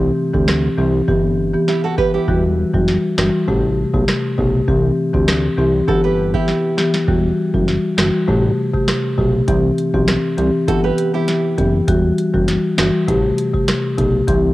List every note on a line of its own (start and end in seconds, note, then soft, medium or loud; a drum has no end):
0.00 0.12 C2 loud
0.34 0.69 D2 medium
0.34 0.54 E3 medium
0.34 0.54 C4 medium
0.34 0.55 G4 medium
0.34 kick medium
0.48 cross-stick medium
0.48 snare loud
0.78 1.02 C2 loud
0.78 1.00 E3 medium
0.78 1.00 C4 medium
0.78 1.00 G4 medium
1.08 1.56 G1 loud
1.08 1.30 E3 medium
1.08 1.30 B3 medium
1.08 1.30 G4 medium
1.08 kick medium
1.54 1.74 E3 medium
1.54 1.74 B3 medium
1.54 1.75 G4 medium
1.68 1.83 E4 medium
1.68 1.83 G4 medium
1.68 snare medium
1.84 1.98 F#4 medium
1.84 1.97 A4 medium
1.98 2.20 E3 medium
1.98 2.20 B3 medium
1.98 2.20 G4 medium
1.98 2.13 G4 medium
1.98 2.13 B4 medium
1.98 kick medium
2.14 2.43 E4 medium
2.14 2.42 G4 medium
2.28 2.65 E1 loud
2.28 2.50 E3 medium
2.28 2.50 G3 medium
2.28 2.50 F#4 loud
2.28 kick loud
2.74 2.98 F#1 medium
2.74 2.94 E3 medium
2.74 2.95 G3 medium
2.74 2.95 F#4 medium
2.74 kick medium
2.88 snare medium
3.18 3.31 G1 loud
3.18 3.40 E3 medium
3.18 3.40 G3 medium
3.18 3.40 F#4 medium
3.18 cross-stick medium
3.18 snare loud
3.48 3.85 A1 loud
3.48 3.70 C3 medium
3.48 3.70 A3 medium
3.48 3.70 G4 medium
3.48 kick medium
3.94 4.05 B1 loud
3.94 4.14 C3 medium
3.94 4.15 A3 medium
3.94 4.15 G4 medium
3.94 kick medium
4.08 cross-stick medium
4.08 snare loud
4.38 4.62 B1 medium
4.38 4.59 C3 medium
4.38 4.60 A3 medium
4.38 4.60 G4 medium
4.38 kick medium
4.68 4.92 C2 loud
4.68 4.90 E3 medium
4.68 4.90 C4 medium
4.68 4.90 G4 loud
4.68 kick loud
5.14 5.49 D2 medium
5.14 5.34 E3 medium
5.14 5.34 C4 medium
5.14 5.35 G4 medium
5.14 kick medium
5.28 cross-stick medium
5.28 snare loud
5.58 5.82 C2 loud
5.58 5.80 E3 medium
5.58 5.80 C4 medium
5.58 5.80 G4 medium
5.88 6.36 G1 loud
5.88 6.10 E3 medium
5.88 6.10 B3 medium
5.88 6.03 F#4 medium
5.88 6.10 G4 loud
5.88 6.03 A4 medium
5.88 kick medium
6.04 6.33 G4 medium
6.04 6.32 B4 medium
6.34 6.54 E3 medium
6.34 6.55 B3 medium
6.34 7.05 E4 medium
6.34 7.04 G4 medium
6.34 6.55 G4 medium
6.34 kick medium
6.48 snare medium
6.78 7.00 E3 medium
6.78 7.00 B3 medium
6.78 7.00 G4 medium
6.78 snare medium
6.94 snare medium
7.08 7.32 E1 loud
7.08 7.30 E3 medium
7.08 7.30 G3 medium
7.08 7.30 F#4 loud
7.08 kick loud
7.54 7.78 F#1 medium
7.54 7.74 E3 medium
7.54 7.75 G3 medium
7.54 7.75 F#4 medium
7.54 kick medium
7.68 snare medium
7.98 8.11 G1 medium
7.98 8.20 E3 medium
7.98 8.20 G3 medium
7.98 8.20 F#4 medium
7.98 cross-stick medium
7.98 snare loud
8.28 8.52 A1 loud
8.28 8.50 C3 medium
8.28 8.50 A3 medium
8.28 8.50 G4 medium
8.28 kick medium
8.74 8.94 C3 medium
8.74 8.95 A3 medium
8.74 8.95 G4 medium
8.74 kick medium
8.88 cross-stick medium
8.88 snare loud
9.18 9.42 B1 medium
9.18 9.39 C3 medium
9.18 9.40 A3 medium
9.18 9.40 G4 medium
9.18 kick medium
9.48 9.72 C2 loud
9.48 9.69 E3 medium
9.48 9.70 C4 medium
9.48 9.70 G4 loud
9.48 kick loud
9.48 closed hi-hat medium
9.78 closed hi-hat soft
9.94 10.18 B1 medium
9.94 10.14 E3 medium
9.94 10.15 C4 medium
9.94 10.15 G4 medium
9.94 kick medium
10.08 cross-stick medium
10.08 snare loud
10.08 closed hi-hat medium
10.38 10.51 C2 loud
10.38 10.60 E3 medium
10.38 10.60 C4 medium
10.38 10.60 G4 medium
10.38 closed hi-hat soft
10.68 10.92 G1 loud
10.68 10.90 E3 medium
10.68 10.90 B3 medium
10.68 10.83 F#4 medium
10.68 10.90 G4 loud
10.68 10.83 A4 medium
10.68 kick medium
10.68 closed hi-hat medium
10.84 11.13 G4 medium
10.84 11.12 B4 medium
10.98 closed hi-hat medium
11.14 11.34 E3 medium
11.14 11.35 B3 medium
11.14 11.85 E4 medium
11.14 11.84 G4 medium
11.14 11.35 G4 medium
11.28 snare medium
11.28 closed hi-hat medium
11.58 11.82 F#1 medium
11.58 11.80 E3 medium
11.58 11.80 B3 medium
11.58 11.80 G4 medium
11.58 kick medium
11.58 closed hi-hat soft
11.88 12.12 E1 loud
11.88 12.10 E3 medium
11.88 12.10 G3 medium
11.88 12.10 F#4 loud
11.88 kick loud
11.88 closed hi-hat medium
12.18 closed hi-hat soft
12.34 12.58 F#1 medium
12.34 12.54 E3 medium
12.34 12.55 G3 medium
12.34 12.55 F#4 medium
12.34 kick medium
12.48 snare medium
12.48 closed hi-hat medium
12.78 12.91 G1 loud
12.78 13.00 E3 medium
12.78 13.00 G3 medium
12.78 13.00 F#4 medium
12.78 cross-stick loud
12.78 snare loud
12.78 closed hi-hat medium
13.08 13.32 A1 loud
13.08 13.29 C3 medium
13.08 13.30 A3 medium
13.08 13.30 G4 loud
13.08 kick medium
13.08 closed hi-hat medium
13.38 closed hi-hat medium
13.54 13.74 C3 medium
13.54 13.74 A3 medium
13.54 13.75 G4 medium
13.54 kick loud
13.68 cross-stick medium
13.68 snare loud
13.68 closed hi-hat medium
13.98 14.22 B1 medium
13.98 14.20 C3 medium
13.98 14.20 A3 medium
13.98 14.20 G4 medium
13.98 kick medium
13.98 closed hi-hat soft
14.28 14.52 C2 loud
14.28 14.50 E3 medium
14.28 14.50 C4 medium
14.28 14.50 G4 loud
14.28 kick loud
14.28 closed hi-hat medium